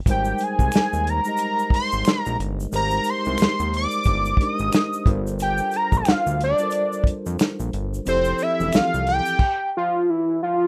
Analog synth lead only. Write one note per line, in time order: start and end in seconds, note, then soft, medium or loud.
0.11 0.45 G5 medium
0.43 1.11 G#5 medium
1.09 1.74 A#5 loud
1.75 2.21 C6 medium
2.21 2.37 A#5 medium
2.76 3.11 A#5 medium
3.10 3.74 C6 medium
3.77 4.45 D6 loud
4.43 5.08 D#6 medium
5.42 5.78 G5 medium
5.76 5.99 A#5 loud
5.97 6.42 F5 loud
6.44 7.04 D5 medium
8.08 8.44 C5 medium
8.42 8.77 E5 medium
8.76 9.08 F5 medium
9.09 9.70 G5 loud
9.77 10.11 F4 medium
10.09 10.41 E4 medium
10.43 10.67 F4 loud